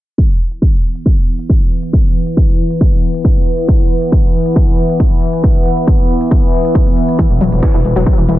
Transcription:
0.18 synth drone E3 B3, kick, closed hi-hat
0.30 closed hi-hat
0.52 closed hi-hat
0.62 kick, closed hi-hat
0.73 closed hi-hat
0.95 closed hi-hat
1.06 kick, closed hi-hat
1.17 closed hi-hat
1.39 closed hi-hat
1.49 kick, closed hi-hat
1.61 closed hi-hat
1.71 closed hi-hat
1.83 closed hi-hat
1.93 kick, closed hi-hat
2.05 closed hi-hat
2.27 closed hi-hat
2.37 kick, closed hi-hat
2.49 closed hi-hat
2.70 closed hi-hat
2.81 kick, closed hi-hat
2.92 closed hi-hat
3.14 closed hi-hat
3.25 kick, closed hi-hat
3.36 closed hi-hat
3.47 closed hi-hat
3.58 closed hi-hat
3.68 kick, closed hi-hat
3.80 closed hi-hat
4.02 closed hi-hat
4.12 kick, closed hi-hat
4.24 closed hi-hat
4.46 closed hi-hat
4.56 kick, closed hi-hat
4.68 closed hi-hat
4.89 closed hi-hat
5.00 kick, closed hi-hat
5.11 closed hi-hat
5.22 closed hi-hat
5.33 closed hi-hat
5.44 kick, closed hi-hat
5.55 closed hi-hat
5.77 closed hi-hat
5.87 kick, closed hi-hat
5.99 closed hi-hat
6.21 closed hi-hat
6.31 kick, closed hi-hat
6.43 closed hi-hat
6.65 closed hi-hat
6.75 kick, closed hi-hat
6.87 closed hi-hat
6.97 closed hi-hat
7.09 closed hi-hat
7.19 synth arpeggio sound E3, kick, closed hi-hat
7.30 analog synth bass E1, closed hi-hat
7.41 analog synth bass E1, synth arpeggio sound F#3, closed hi-hat
7.52 analog synth bass E1, closed hi-hat
7.63 synth arpeggio sound E3, kick, snare, closed hi-hat
7.74 analog synth bass E1, synth arpeggio sound E3, snare, closed hi-hat
7.84 analog synth bass E1, closed hi-hat
7.96 analog synth bass E1, synth arpeggio sound F#3, snare, closed hi-hat
8.06 kick, closed hi-hat
8.18 analog synth bass E1, synth arpeggio sound E3, closed hi-hat
8.28 analog synth bass E1, synth arpeggio sound E3, closed hi-hat

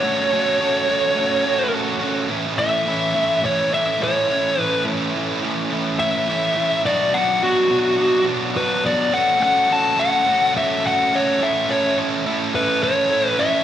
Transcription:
Already playing: lead electric guitar C#5
0.04 distorted electric guitar A3 C#4 F#4 A4
0.32 distorted electric guitar A3 C#4 F#4 A4
0.60 distorted electric guitar A3 C#4 F#4 A4
0.88 distorted electric guitar A3 C#4 F#4 A4
1.15 distorted electric guitar A3 C#4 F#4 A4
1.44 distorted electric guitar A3 C#4 F#4 A4
1.73 distorted electric guitar A3 C#4 F#4 A4
2.01 distorted electric guitar A3 C#4 F#4 A4
2.29 distorted electric guitar A2 E3 A3 C#4 E4
2.58 distorted electric guitar A2 E3 A3 C#4 E4, lead electric guitar E5
2.86 distorted electric guitar A2 E3 A3 C#4 E4
3.14 distorted electric guitar A2 E3 A3 C#4 E4
3.42 distorted electric guitar A2 E3 A3 C#4 E4, lead electric guitar C#5
3.71 distorted electric guitar A2 E3 A3 C#4 E4, lead electric guitar E5
4.00 distorted electric guitar A2 E3 A3 C#4 E4, lead electric guitar C#5
4.28 distorted electric guitar A2 E3 A3 C#4 E4
4.57 distorted electric guitar A2 E3 A3 C#4 E4
4.61 lead electric guitar B4
4.85 distorted electric guitar A2 E3 A3 C#4 E4
5.14 distorted electric guitar A2 E3 A3 C#4 E4
5.42 distorted electric guitar A2 E3 A3 C#4 E4
5.71 distorted electric guitar A2 E3 A3 C#4 E4
5.98 distorted electric guitar A2 E3 A3 C#4 E4, lead electric guitar E5
6.28 distorted electric guitar A2 E3 A3 C#4 E4
6.56 distorted electric guitar A2 E3 A3 C#4 E4
6.84 distorted electric guitar B2 F#3 B3 D4 F#4, lead electric guitar D5
7.13 distorted electric guitar B2 F#3 B3 D4 F#4, lead electric guitar F#5
7.42 distorted electric guitar B2 F#3 B3 D4 F#4, lead electric guitar F#4
7.70 distorted electric guitar B2 F#3 B3 D4 F#4
7.98 distorted electric guitar B2 F#3 B3 D4 F#4
8.26 distorted electric guitar B2 F#3 B3 D4 F#4
8.56 distorted electric guitar B2 F#3 B3 D4 F#4, lead electric guitar B4
8.84 distorted electric guitar B2 F#3 B3 D4 F#4, lead electric guitar D5
9.12 distorted electric guitar A3 C#4 F#4 A4, lead electric guitar F#5
9.40 distorted electric guitar A3 C#4 F#4 A4, lead electric guitar F#5
9.69 distorted electric guitar A3 C#4 F#4 A4, lead electric guitar A5
9.97 distorted electric guitar A3 C#4 F#4 A4, lead electric guitar F#5
10.25 distorted electric guitar A3 C#4 F#4 A4
10.54 distorted electric guitar A3 C#4 F#4 A4, lead electric guitar E5
10.82 distorted electric guitar A3 C#4 F#4 A4
10.87 lead electric guitar F#5
11.11 distorted electric guitar A3 C#4 F#4 A4
11.15 lead electric guitar C#5
11.40 distorted electric guitar A3 C#4 E4 A4, lead electric guitar E5
11.68 distorted electric guitar A3 C#4 E4 A4, lead electric guitar C#5
11.96 distorted electric guitar A3 C#4 E4 A4
12.25 distorted electric guitar A3 C#4 E4 A4
12.54 distorted electric guitar A3 C#4 E4 A4, lead electric guitar B4
12.83 distorted electric guitar A3 C#4 E4 A4, lead electric guitar C#5
13.10 distorted electric guitar A3 C#4 E4 A4
13.29 lead electric guitar B4
13.38 distorted electric guitar A3 C#4 E4 A4, lead electric guitar E5

